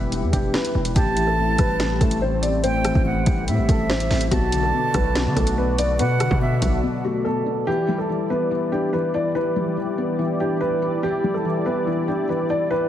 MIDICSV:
0, 0, Header, 1, 7, 480
1, 0, Start_track
1, 0, Key_signature, 1, "minor"
1, 0, Tempo, 419580
1, 1097, Time_signature, 4, 2, 24, 8
1, 14742, End_track
2, 0, Start_track
2, 0, Title_t, "Flute"
2, 0, Program_c, 0, 73
2, 1098, Note_on_c, 0, 81, 118
2, 2492, Note_off_c, 0, 81, 0
2, 3016, Note_on_c, 0, 79, 102
2, 3468, Note_off_c, 0, 79, 0
2, 3499, Note_on_c, 0, 78, 86
2, 3950, Note_off_c, 0, 78, 0
2, 3977, Note_on_c, 0, 76, 90
2, 4891, Note_off_c, 0, 76, 0
2, 4938, Note_on_c, 0, 81, 114
2, 6332, Note_off_c, 0, 81, 0
2, 6857, Note_on_c, 0, 78, 112
2, 7308, Note_off_c, 0, 78, 0
2, 7338, Note_on_c, 0, 76, 83
2, 7789, Note_off_c, 0, 76, 0
2, 14742, End_track
3, 0, Start_track
3, 0, Title_t, "Grand piano"
3, 0, Program_c, 1, 0
3, 0, Note_on_c, 1, 71, 99
3, 330, Note_off_c, 1, 71, 0
3, 382, Note_on_c, 1, 67, 89
3, 565, Note_off_c, 1, 67, 0
3, 617, Note_on_c, 1, 71, 91
3, 1068, Note_off_c, 1, 71, 0
3, 1097, Note_on_c, 1, 67, 97
3, 1435, Note_off_c, 1, 67, 0
3, 1455, Note_on_c, 1, 69, 76
3, 1795, Note_off_c, 1, 69, 0
3, 1822, Note_on_c, 1, 71, 94
3, 2271, Note_off_c, 1, 71, 0
3, 2295, Note_on_c, 1, 69, 76
3, 2481, Note_off_c, 1, 69, 0
3, 2537, Note_on_c, 1, 72, 81
3, 2722, Note_off_c, 1, 72, 0
3, 2772, Note_on_c, 1, 74, 81
3, 2959, Note_off_c, 1, 74, 0
3, 3015, Note_on_c, 1, 72, 92
3, 4170, Note_off_c, 1, 72, 0
3, 4220, Note_on_c, 1, 69, 79
3, 4404, Note_off_c, 1, 69, 0
3, 4460, Note_on_c, 1, 72, 80
3, 4910, Note_off_c, 1, 72, 0
3, 4933, Note_on_c, 1, 66, 109
3, 5273, Note_off_c, 1, 66, 0
3, 5297, Note_on_c, 1, 69, 79
3, 5636, Note_off_c, 1, 69, 0
3, 5655, Note_on_c, 1, 71, 84
3, 6107, Note_off_c, 1, 71, 0
3, 6139, Note_on_c, 1, 69, 83
3, 6323, Note_off_c, 1, 69, 0
3, 6382, Note_on_c, 1, 71, 86
3, 6565, Note_off_c, 1, 71, 0
3, 6618, Note_on_c, 1, 74, 94
3, 6803, Note_off_c, 1, 74, 0
3, 6858, Note_on_c, 1, 71, 98
3, 8012, Note_off_c, 1, 71, 0
3, 8060, Note_on_c, 1, 66, 86
3, 8244, Note_off_c, 1, 66, 0
3, 8290, Note_on_c, 1, 69, 83
3, 8745, Note_off_c, 1, 69, 0
3, 8774, Note_on_c, 1, 67, 105
3, 9114, Note_off_c, 1, 67, 0
3, 9132, Note_on_c, 1, 69, 78
3, 9473, Note_off_c, 1, 69, 0
3, 9497, Note_on_c, 1, 71, 85
3, 9948, Note_off_c, 1, 71, 0
3, 9975, Note_on_c, 1, 67, 81
3, 10161, Note_off_c, 1, 67, 0
3, 10214, Note_on_c, 1, 71, 83
3, 10400, Note_off_c, 1, 71, 0
3, 10461, Note_on_c, 1, 74, 80
3, 10645, Note_off_c, 1, 74, 0
3, 10697, Note_on_c, 1, 71, 91
3, 11851, Note_off_c, 1, 71, 0
3, 11901, Note_on_c, 1, 67, 83
3, 12085, Note_off_c, 1, 67, 0
3, 12133, Note_on_c, 1, 71, 86
3, 12586, Note_off_c, 1, 71, 0
3, 12620, Note_on_c, 1, 67, 102
3, 12957, Note_off_c, 1, 67, 0
3, 12975, Note_on_c, 1, 69, 81
3, 13315, Note_off_c, 1, 69, 0
3, 13337, Note_on_c, 1, 71, 83
3, 13788, Note_off_c, 1, 71, 0
3, 13818, Note_on_c, 1, 67, 83
3, 14003, Note_off_c, 1, 67, 0
3, 14062, Note_on_c, 1, 71, 76
3, 14245, Note_off_c, 1, 71, 0
3, 14299, Note_on_c, 1, 74, 89
3, 14483, Note_off_c, 1, 74, 0
3, 14535, Note_on_c, 1, 71, 98
3, 14742, Note_off_c, 1, 71, 0
3, 14742, End_track
4, 0, Start_track
4, 0, Title_t, "Analog synth pad"
4, 0, Program_c, 2, 89
4, 0, Note_on_c, 2, 52, 82
4, 0, Note_on_c, 2, 64, 77
4, 0, Note_on_c, 2, 67, 74
4, 0, Note_on_c, 2, 74, 92
4, 1051, Note_off_c, 2, 52, 0
4, 1051, Note_off_c, 2, 74, 0
4, 1097, Note_on_c, 2, 57, 83
4, 1097, Note_on_c, 2, 60, 91
4, 4891, Note_off_c, 2, 64, 0
4, 4891, Note_off_c, 2, 67, 0
4, 4898, Note_off_c, 2, 57, 0
4, 4898, Note_off_c, 2, 60, 0
4, 4937, Note_on_c, 2, 66, 78
4, 4937, Note_on_c, 2, 69, 76
4, 4938, Note_on_c, 2, 59, 83
4, 4938, Note_on_c, 2, 74, 94
4, 8739, Note_off_c, 2, 59, 0
4, 8739, Note_off_c, 2, 66, 0
4, 8739, Note_off_c, 2, 69, 0
4, 8739, Note_off_c, 2, 74, 0
4, 8777, Note_on_c, 2, 52, 87
4, 8777, Note_on_c, 2, 64, 76
4, 8777, Note_on_c, 2, 67, 76
4, 8777, Note_on_c, 2, 74, 92
4, 14742, Note_off_c, 2, 52, 0
4, 14742, Note_off_c, 2, 64, 0
4, 14742, Note_off_c, 2, 67, 0
4, 14742, Note_off_c, 2, 74, 0
4, 14742, End_track
5, 0, Start_track
5, 0, Title_t, "Felt piano"
5, 0, Program_c, 3, 0
5, 0, Control_c, 3, 64, 127
5, 0, Note_on_c, 3, 52, 89
5, 0, Note_on_c, 3, 55, 89
5, 0, Note_on_c, 3, 59, 88
5, 0, Note_on_c, 3, 62, 89
5, 0, Note_on_c, 3, 64, 86
5, 119, Note_off_c, 3, 52, 0
5, 136, Note_on_c, 3, 52, 96
5, 137, Note_off_c, 3, 64, 0
5, 378, Note_off_c, 3, 62, 0
5, 378, Note_on_c, 3, 62, 88
5, 599, Note_off_c, 3, 52, 0
5, 617, Note_off_c, 3, 55, 0
5, 617, Note_on_c, 3, 52, 89
5, 859, Note_on_c, 3, 64, 89
5, 1097, Note_off_c, 3, 52, 0
5, 1097, Note_off_c, 3, 62, 0
5, 1097, Note_on_c, 3, 45, 83
5, 1098, Note_off_c, 3, 59, 0
5, 1098, Note_off_c, 3, 64, 0
5, 1114, Control_c, 3, 64, 0
5, 1282, Control_c, 3, 64, 127
5, 1336, Note_on_c, 3, 52, 85
5, 1561, Note_off_c, 3, 45, 0
5, 1578, Note_on_c, 3, 45, 82
5, 1816, Note_on_c, 3, 55, 88
5, 2041, Note_off_c, 3, 45, 0
5, 2058, Note_on_c, 3, 45, 93
5, 2294, Note_on_c, 3, 57, 96
5, 2520, Note_off_c, 3, 45, 0
5, 2536, Note_off_c, 3, 52, 0
5, 2537, Note_on_c, 3, 45, 87
5, 2779, Note_on_c, 3, 60, 87
5, 3001, Note_off_c, 3, 45, 0
5, 3017, Note_off_c, 3, 55, 0
5, 3018, Note_on_c, 3, 45, 94
5, 3257, Note_on_c, 3, 52, 81
5, 3479, Note_off_c, 3, 45, 0
5, 3496, Note_off_c, 3, 57, 0
5, 3496, Note_on_c, 3, 45, 84
5, 3737, Note_on_c, 3, 55, 85
5, 3960, Note_off_c, 3, 45, 0
5, 3977, Note_on_c, 3, 45, 94
5, 3978, Note_off_c, 3, 60, 0
5, 4218, Note_on_c, 3, 57, 85
5, 4441, Note_off_c, 3, 45, 0
5, 4457, Note_off_c, 3, 52, 0
5, 4458, Note_on_c, 3, 45, 88
5, 4698, Note_on_c, 3, 60, 91
5, 4937, Note_off_c, 3, 55, 0
5, 4938, Note_off_c, 3, 45, 0
5, 4938, Note_off_c, 3, 57, 0
5, 4938, Note_off_c, 3, 60, 0
5, 4938, Note_on_c, 3, 47, 93
5, 4954, Control_c, 3, 64, 0
5, 5134, Control_c, 3, 64, 127
5, 5179, Note_on_c, 3, 50, 87
5, 5400, Note_off_c, 3, 47, 0
5, 5417, Note_on_c, 3, 47, 84
5, 5658, Note_on_c, 3, 54, 84
5, 5882, Note_off_c, 3, 47, 0
5, 5899, Note_on_c, 3, 47, 95
5, 6135, Note_on_c, 3, 57, 85
5, 6360, Note_off_c, 3, 47, 0
5, 6377, Note_on_c, 3, 47, 84
5, 6378, Note_off_c, 3, 50, 0
5, 6618, Note_on_c, 3, 59, 88
5, 6840, Note_off_c, 3, 47, 0
5, 6858, Note_off_c, 3, 54, 0
5, 6858, Note_on_c, 3, 47, 98
5, 7095, Note_on_c, 3, 50, 82
5, 7321, Note_off_c, 3, 47, 0
5, 7336, Note_off_c, 3, 57, 0
5, 7338, Note_on_c, 3, 47, 79
5, 7578, Note_on_c, 3, 54, 88
5, 7801, Note_off_c, 3, 47, 0
5, 7817, Note_off_c, 3, 59, 0
5, 7819, Note_on_c, 3, 47, 92
5, 8057, Note_on_c, 3, 57, 85
5, 8278, Note_off_c, 3, 47, 0
5, 8296, Note_off_c, 3, 50, 0
5, 8296, Note_on_c, 3, 47, 84
5, 8536, Note_on_c, 3, 59, 80
5, 8776, Note_off_c, 3, 47, 0
5, 8777, Note_off_c, 3, 54, 0
5, 8777, Note_off_c, 3, 57, 0
5, 8777, Note_off_c, 3, 59, 0
5, 8778, Note_on_c, 3, 52, 99
5, 8790, Control_c, 3, 64, 0
5, 8973, Control_c, 3, 64, 127
5, 9019, Note_on_c, 3, 55, 87
5, 9241, Note_off_c, 3, 52, 0
5, 9258, Note_on_c, 3, 52, 87
5, 9496, Note_on_c, 3, 59, 84
5, 9719, Note_off_c, 3, 52, 0
5, 9736, Note_on_c, 3, 52, 97
5, 9978, Note_on_c, 3, 62, 96
5, 10202, Note_off_c, 3, 52, 0
5, 10218, Note_off_c, 3, 55, 0
5, 10219, Note_on_c, 3, 52, 90
5, 10455, Note_on_c, 3, 64, 95
5, 10679, Note_off_c, 3, 52, 0
5, 10696, Note_on_c, 3, 52, 91
5, 10697, Note_off_c, 3, 59, 0
5, 10937, Note_on_c, 3, 55, 88
5, 11159, Note_off_c, 3, 52, 0
5, 11177, Note_on_c, 3, 52, 87
5, 11178, Note_off_c, 3, 62, 0
5, 11417, Note_on_c, 3, 59, 84
5, 11637, Note_off_c, 3, 52, 0
5, 11655, Note_on_c, 3, 52, 93
5, 11656, Note_off_c, 3, 64, 0
5, 11899, Note_on_c, 3, 62, 83
5, 12119, Note_off_c, 3, 52, 0
5, 12136, Note_on_c, 3, 52, 82
5, 12137, Note_off_c, 3, 55, 0
5, 12379, Note_on_c, 3, 64, 93
5, 12599, Note_off_c, 3, 52, 0
5, 12617, Note_off_c, 3, 59, 0
5, 12617, Note_on_c, 3, 52, 91
5, 12857, Note_on_c, 3, 55, 84
5, 13080, Note_off_c, 3, 52, 0
5, 13098, Note_off_c, 3, 62, 0
5, 13098, Note_on_c, 3, 52, 84
5, 13339, Note_on_c, 3, 59, 82
5, 13561, Note_off_c, 3, 52, 0
5, 13578, Note_off_c, 3, 64, 0
5, 13578, Note_on_c, 3, 52, 98
5, 13818, Note_on_c, 3, 62, 89
5, 14041, Note_off_c, 3, 52, 0
5, 14057, Note_off_c, 3, 55, 0
5, 14059, Note_on_c, 3, 52, 83
5, 14297, Note_on_c, 3, 64, 86
5, 14519, Note_off_c, 3, 52, 0
5, 14537, Note_on_c, 3, 52, 94
5, 14538, Note_off_c, 3, 59, 0
5, 14742, Note_off_c, 3, 52, 0
5, 14742, Note_off_c, 3, 62, 0
5, 14742, Note_off_c, 3, 64, 0
5, 14742, End_track
6, 0, Start_track
6, 0, Title_t, "808-style bass"
6, 0, Program_c, 4, 38
6, 0, Note_on_c, 4, 28, 110
6, 257, Note_on_c, 4, 40, 100
6, 274, Note_off_c, 4, 28, 0
6, 371, Note_off_c, 4, 40, 0
6, 377, Note_on_c, 4, 28, 102
6, 608, Note_off_c, 4, 28, 0
6, 857, Note_on_c, 4, 28, 107
6, 1088, Note_off_c, 4, 28, 0
6, 1097, Note_on_c, 4, 33, 111
6, 1788, Note_off_c, 4, 33, 0
6, 1816, Note_on_c, 4, 33, 106
6, 2277, Note_off_c, 4, 33, 0
6, 2297, Note_on_c, 4, 33, 106
6, 3334, Note_off_c, 4, 33, 0
6, 3378, Note_on_c, 4, 33, 99
6, 3723, Note_off_c, 4, 33, 0
6, 3736, Note_on_c, 4, 33, 111
6, 3977, Note_on_c, 4, 45, 102
6, 3994, Note_off_c, 4, 33, 0
6, 4097, Note_on_c, 4, 33, 102
6, 4114, Note_off_c, 4, 45, 0
6, 4211, Note_off_c, 4, 33, 0
6, 4217, Note_on_c, 4, 33, 108
6, 4678, Note_off_c, 4, 33, 0
6, 4697, Note_on_c, 4, 33, 108
6, 4928, Note_off_c, 4, 33, 0
6, 4937, Note_on_c, 4, 35, 113
6, 5398, Note_off_c, 4, 35, 0
6, 5656, Note_on_c, 4, 35, 109
6, 6017, Note_on_c, 4, 50, 103
6, 6034, Note_off_c, 4, 35, 0
6, 6131, Note_off_c, 4, 50, 0
6, 6137, Note_on_c, 4, 35, 110
6, 6857, Note_on_c, 4, 47, 100
6, 6874, Note_off_c, 4, 35, 0
6, 7199, Note_off_c, 4, 47, 0
6, 7217, Note_on_c, 4, 47, 103
6, 7563, Note_off_c, 4, 47, 0
6, 7576, Note_on_c, 4, 35, 106
6, 7817, Note_off_c, 4, 35, 0
6, 14742, End_track
7, 0, Start_track
7, 0, Title_t, "Drums"
7, 139, Note_on_c, 9, 42, 72
7, 253, Note_off_c, 9, 42, 0
7, 377, Note_on_c, 9, 36, 97
7, 379, Note_on_c, 9, 42, 78
7, 492, Note_off_c, 9, 36, 0
7, 493, Note_off_c, 9, 42, 0
7, 617, Note_on_c, 9, 38, 103
7, 731, Note_off_c, 9, 38, 0
7, 739, Note_on_c, 9, 42, 71
7, 853, Note_off_c, 9, 42, 0
7, 973, Note_on_c, 9, 42, 79
7, 1087, Note_off_c, 9, 42, 0
7, 1096, Note_on_c, 9, 42, 86
7, 1097, Note_on_c, 9, 36, 114
7, 1211, Note_off_c, 9, 36, 0
7, 1211, Note_off_c, 9, 42, 0
7, 1335, Note_on_c, 9, 42, 90
7, 1449, Note_off_c, 9, 42, 0
7, 1812, Note_on_c, 9, 42, 86
7, 1816, Note_on_c, 9, 36, 98
7, 1816, Note_on_c, 9, 37, 95
7, 1927, Note_off_c, 9, 42, 0
7, 1930, Note_off_c, 9, 37, 0
7, 1931, Note_off_c, 9, 36, 0
7, 2056, Note_on_c, 9, 38, 108
7, 2059, Note_on_c, 9, 42, 72
7, 2171, Note_off_c, 9, 38, 0
7, 2173, Note_off_c, 9, 42, 0
7, 2297, Note_on_c, 9, 36, 101
7, 2299, Note_on_c, 9, 42, 70
7, 2412, Note_off_c, 9, 36, 0
7, 2413, Note_off_c, 9, 42, 0
7, 2415, Note_on_c, 9, 42, 95
7, 2530, Note_off_c, 9, 42, 0
7, 2777, Note_on_c, 9, 42, 85
7, 2892, Note_off_c, 9, 42, 0
7, 3016, Note_on_c, 9, 42, 86
7, 3131, Note_off_c, 9, 42, 0
7, 3255, Note_on_c, 9, 42, 85
7, 3257, Note_on_c, 9, 37, 103
7, 3369, Note_off_c, 9, 42, 0
7, 3372, Note_off_c, 9, 37, 0
7, 3378, Note_on_c, 9, 36, 96
7, 3492, Note_off_c, 9, 36, 0
7, 3733, Note_on_c, 9, 42, 86
7, 3736, Note_on_c, 9, 36, 102
7, 3847, Note_off_c, 9, 42, 0
7, 3851, Note_off_c, 9, 36, 0
7, 3979, Note_on_c, 9, 42, 72
7, 4093, Note_off_c, 9, 42, 0
7, 4217, Note_on_c, 9, 36, 101
7, 4219, Note_on_c, 9, 42, 76
7, 4332, Note_off_c, 9, 36, 0
7, 4333, Note_off_c, 9, 42, 0
7, 4457, Note_on_c, 9, 38, 104
7, 4572, Note_off_c, 9, 38, 0
7, 4579, Note_on_c, 9, 42, 71
7, 4693, Note_off_c, 9, 42, 0
7, 4697, Note_on_c, 9, 38, 70
7, 4698, Note_on_c, 9, 46, 61
7, 4812, Note_off_c, 9, 38, 0
7, 4812, Note_off_c, 9, 46, 0
7, 4813, Note_on_c, 9, 42, 79
7, 4928, Note_off_c, 9, 42, 0
7, 4937, Note_on_c, 9, 36, 116
7, 4937, Note_on_c, 9, 42, 83
7, 5051, Note_off_c, 9, 42, 0
7, 5052, Note_off_c, 9, 36, 0
7, 5175, Note_on_c, 9, 42, 89
7, 5290, Note_off_c, 9, 42, 0
7, 5653, Note_on_c, 9, 42, 86
7, 5657, Note_on_c, 9, 36, 99
7, 5657, Note_on_c, 9, 37, 95
7, 5768, Note_off_c, 9, 42, 0
7, 5771, Note_off_c, 9, 36, 0
7, 5771, Note_off_c, 9, 37, 0
7, 5897, Note_on_c, 9, 38, 111
7, 5899, Note_on_c, 9, 42, 71
7, 6011, Note_off_c, 9, 38, 0
7, 6014, Note_off_c, 9, 42, 0
7, 6137, Note_on_c, 9, 36, 99
7, 6139, Note_on_c, 9, 42, 72
7, 6252, Note_off_c, 9, 36, 0
7, 6253, Note_off_c, 9, 42, 0
7, 6256, Note_on_c, 9, 42, 92
7, 6370, Note_off_c, 9, 42, 0
7, 6618, Note_on_c, 9, 42, 86
7, 6732, Note_off_c, 9, 42, 0
7, 6856, Note_on_c, 9, 42, 87
7, 6970, Note_off_c, 9, 42, 0
7, 7095, Note_on_c, 9, 42, 87
7, 7097, Note_on_c, 9, 37, 102
7, 7209, Note_off_c, 9, 42, 0
7, 7212, Note_off_c, 9, 37, 0
7, 7217, Note_on_c, 9, 36, 95
7, 7332, Note_off_c, 9, 36, 0
7, 7573, Note_on_c, 9, 42, 85
7, 7576, Note_on_c, 9, 36, 99
7, 7687, Note_off_c, 9, 42, 0
7, 7691, Note_off_c, 9, 36, 0
7, 14742, End_track
0, 0, End_of_file